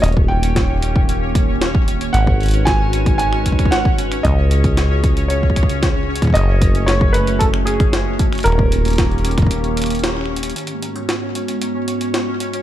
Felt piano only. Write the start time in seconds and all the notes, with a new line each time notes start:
0.02 D#5
0.28 G5
2.13 F#5
2.65 G#5
3.18 G#5
3.71 F#5
4.23 D#5
5.28 C#5
6.34 D#5
6.86 C#5
7.13 B4
7.39 A4
7.65 G#4
8.44 A#4